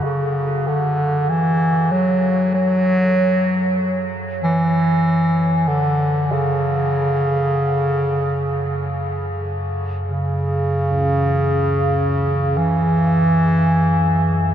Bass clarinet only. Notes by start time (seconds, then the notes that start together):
0.04 C#3
0.68 D3
1.30 E3
1.91 F#3
2.54 F#3
4.43 E3
5.67 D3
6.32 C#3
10.06 C#3
12.58 E3